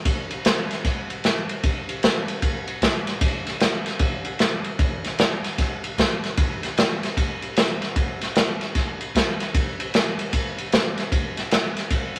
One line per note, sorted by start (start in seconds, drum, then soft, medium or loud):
0.05 kick loud
0.05 ride medium
0.31 ride medium
0.45 snare loud
0.45 ride medium
0.71 snare soft
0.71 ride medium
0.85 kick medium
0.85 snare soft
0.85 ride medium
1.10 ride medium
1.24 snare medium
1.24 ride medium
1.49 ride medium
1.63 kick loud
1.63 ride medium
1.89 ride medium
2.03 snare loud
2.03 ride medium
2.28 ride medium
2.42 kick loud
2.42 ride medium
2.67 ride medium
2.82 kick medium
2.82 snare loud
2.82 ride medium
3.07 snare soft
3.07 ride medium
3.21 kick loud
3.21 ride loud
3.47 snare soft
3.47 ride medium
3.60 snare loud
3.60 ride medium
3.86 snare soft
3.86 ride medium
3.99 kick loud
3.99 ride medium
4.25 ride medium
4.39 snare medium
4.39 ride medium
4.64 ride medium
4.79 kick loud
4.79 ride medium
5.04 snare soft
5.04 ride medium
5.18 snare loud
5.18 ride medium
5.44 snare soft
5.44 ride medium
5.58 kick loud
5.58 snare soft
5.58 ride medium
5.84 ride medium
5.98 kick medium
5.98 snare loud
5.98 ride medium
6.24 snare soft
6.24 ride medium
6.37 kick loud
6.37 ride medium
6.63 snare soft
6.63 ride medium
6.77 snare loud
6.77 ride medium
7.03 snare soft
7.03 ride medium
7.17 kick loud
7.17 ride medium
7.42 ride medium
7.57 snare loud
7.57 ride medium
7.82 snare soft
7.82 ride medium
7.96 kick loud
7.96 ride medium
8.21 snare soft
8.21 ride medium
8.35 snare loud
8.35 ride medium
8.61 snare soft
8.61 ride medium
8.75 kick loud
8.75 snare soft
8.75 ride medium
9.01 ride medium
9.15 kick medium
9.15 snare medium
9.15 ride medium
9.40 snare soft
9.40 ride medium
9.54 kick loud
9.54 ride medium
9.80 ride medium
9.94 snare loud
9.94 ride medium
10.19 ride medium
10.33 kick medium
10.33 ride medium
10.58 ride medium
10.72 snare loud
10.72 ride medium
10.98 snare soft
10.98 ride medium
11.12 kick loud
11.12 ride medium
11.37 snare soft
11.37 ride medium
11.51 snare loud
11.51 ride medium
11.77 snare soft
11.77 ride medium
11.90 kick medium
11.90 ride medium
12.16 ride medium